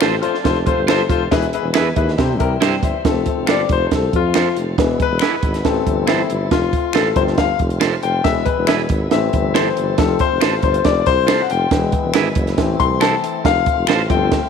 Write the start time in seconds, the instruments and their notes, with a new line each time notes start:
Already playing: tonewheel organ F3 A3 C4
0.01 tuba A1, horn section C4 C5, upright piano F4 A4 C5, clean electric guitar F4 A4 C5, finger snap, snare, closed hi-hat
0.22 horn section D4 D5, upright piano F4 A4 C5, closed hi-hat
0.34 snare
0.44 tuba F1, upright piano F4 A4 C5, kick, snare, closed hi-hat
0.66 horn section C4 C5, upright piano F4 A4 C5, kick, closed hi-hat
0.77 tuba G1
0.87 clean electric guitar F4 A4 C5, upright piano F4 A4 C5, finger snap, snare, closed hi-hat
1.09 tuba F1, upright piano F4 A4 C5, kick, closed hi-hat
1.31 tuba E1, tonewheel organ E3 G#3 B3, upright piano E3 E4 G#4 B4, kick, snare, closed hi-hat
1.42 closed hi-hat
1.53 upright piano E4 G#4 B4, closed hi-hat
1.63 tuba E1
1.74 tuba E2, clean electric guitar E4 G#4 B4, upright piano E4 G#4 B4, finger snap, snare, closed hi-hat
1.96 tuba D#2, upright piano E4 G#4 B4, kick, closed hi-hat
2.08 snare
2.18 upright piano C3 E4 G4 C5, tuba C3, tonewheel organ G3 C4, kick, snare, closed hi-hat
2.39 tuba C2, upright piano E4 G4 A#4, kick, closed hi-hat
2.61 tuba G2, clean electric guitar E4 G4 C5, upright piano E5 G5, finger snap, snare, closed hi-hat
2.83 tuba G1, upright piano C5 E5, kick, closed hi-hat
3.04 tuba F1, tonewheel organ F3 A3 C4, upright piano F3 A3 C4 A4, kick, snare, closed hi-hat
3.26 kick, closed hi-hat
3.36 tuba F1
3.47 tuba G1, clean electric guitar F4 A4 C5, upright piano D5, finger snap, snare, closed hi-hat
3.69 tuba F1, upright piano C5, kick, closed hi-hat
3.87 upright piano C5
3.91 tuba C2, upright piano A4, kick, snare, closed hi-hat
4.13 tuba F2, upright piano F4, kick, closed hi-hat
4.34 clean electric guitar F4 A4 C5, finger snap, snare, closed hi-hat
4.56 tuba F1, closed hi-hat
4.78 tuba E1, upright piano E3 G#3 B3, tonewheel organ G#3 B3 E4, kick, snare, closed hi-hat
5.00 upright piano B4, kick, closed hi-hat
5.10 tuba E1
5.19 clean electric guitar E4 G#4 B4, finger snap, snare, closed hi-hat
5.32 tuba G#1
5.43 tuba G#1, kick, closed hi-hat
5.54 snare, closed hi-hat
5.64 tuba A1, upright piano E3 A3 C4 A4, tonewheel organ A3 C4 E4, kick, snare, closed hi-hat
5.86 tuba G1, kick, closed hi-hat
6.07 clean electric guitar E4 A4 C5, upright piano E4, finger snap, snare, closed hi-hat
6.29 tuba G1, closed hi-hat
6.51 tuba F1, tonewheel organ F4, upright piano F4, kick, snare, closed hi-hat
6.73 kick, closed hi-hat
6.93 tuba A1, clean electric guitar F4 A4 C5, upright piano A4, finger snap, snare, closed hi-hat
7.16 tuba G1, upright piano F3 A3 C4 C5, kick, closed hi-hat
7.27 snare
7.38 upright piano F5, kick, snare, closed hi-hat
7.59 tuba F1, kick, closed hi-hat
7.70 closed hi-hat
7.80 clean electric guitar F4 A4 C5, finger snap, snare, closed hi-hat
8.03 tuba F1, upright piano G5, closed hi-hat
8.24 tuba E1, upright piano E3 G#3 B3 E5, tonewheel organ G#3 B3 E4, kick, snare, closed hi-hat
8.45 upright piano B4, kick, closed hi-hat
8.57 tuba E1
8.67 clean electric guitar E4 G#4 B4, upright piano E5, finger snap, snare, closed hi-hat
8.89 tuba G#1, kick, closed hi-hat
9.11 tuba A1, upright piano E3 A3 C4 E5, tonewheel organ A3 C4, snare, closed hi-hat
9.33 tuba G1, kick, closed hi-hat
9.54 clean electric guitar E4 A4 C5, upright piano C5, finger snap, snare, closed hi-hat
9.77 tuba G1, closed hi-hat
9.98 tuba F1, upright piano F3 A3 C4 A4, tonewheel organ F4, kick, snare, closed hi-hat
10.19 upright piano C5, kick, closed hi-hat
10.31 tuba F1
10.41 tuba A1, clean electric guitar F4 A4 C5, finger snap, snare, closed hi-hat
10.62 tuba G1, upright piano C5, kick, closed hi-hat
10.74 closed hi-hat
10.85 tuba F1, upright piano D5, kick, snare, closed hi-hat
11.00 upright piano D5
11.06 tuba C2, upright piano C5, kick, closed hi-hat
11.27 clean electric guitar F4 A4 C5, finger snap, snare, closed hi-hat
11.42 upright piano F#5
11.50 tuba F1, upright piano G5, closed hi-hat
11.71 tuba E1, upright piano E3 G#3 B3, tonewheel organ G#3 B3 E4, kick, snare, closed hi-hat
11.92 kick, closed hi-hat
12.04 tuba E1
12.14 tuba G#1, clean electric guitar E4 G#4 B4, finger snap, snare, closed hi-hat
12.35 tuba F#1, kick, closed hi-hat
12.47 snare, closed hi-hat
12.57 tuba A1, upright piano E3 A3 C4, tonewheel organ A3 C4, kick, snare, closed hi-hat
12.80 tuba C2, upright piano C6, kick, closed hi-hat
13.01 clean electric guitar E4 A4 C5, upright piano A5, finger snap, snare, closed hi-hat
13.24 closed hi-hat
13.44 tuba F1, tonewheel organ F4, upright piano F5, kick, snare, closed hi-hat
13.66 kick, closed hi-hat
13.77 tuba F1
13.87 tuba A1, clean electric guitar F4 A4 C5, finger snap, snare, closed hi-hat
14.09 tuba G1, upright piano F3 A3 C4 G5, kick, closed hi-hat
14.32 kick, snare, closed hi-hat